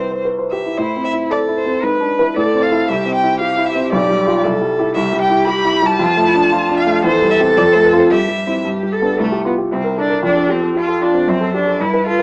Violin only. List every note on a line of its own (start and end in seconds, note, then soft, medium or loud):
0.00 0.23 C5 medium
0.51 0.79 E5 medium
0.78 1.04 C5 medium
1.04 1.12 E5 loud
1.31 1.39 D5 medium
1.57 1.85 C5 medium
1.84 2.37 B4 medium
2.36 2.63 D5 loud
2.62 2.89 F5 medium
2.88 3.13 E5 loud
3.14 3.39 G5 loud
3.39 3.67 F5 loud
3.66 3.91 E5 loud
3.92 4.42 D5 loud
4.94 5.19 E5 loud
5.21 5.46 G5 loud
5.46 5.87 B5 loud
5.85 6.76 A5 loud
6.77 7.03 F5 loud
7.04 7.30 C5 loud
7.30 7.38 E5 loud
7.57 7.62 D5 loud
7.72 7.77 C5 medium
7.83 7.88 B4 medium
7.98 8.03 C5 medium
8.10 8.64 E5 loud
9.19 9.44 A3 medium
9.46 9.54 B3 medium
9.72 10.00 C4 medium
9.98 10.24 D4 medium
10.24 10.51 D4 medium
10.50 10.75 C4 medium
10.76 11.01 F4 medium
11.02 11.10 D4 medium
11.28 11.77 C5 medium
11.80 12.22 B4 medium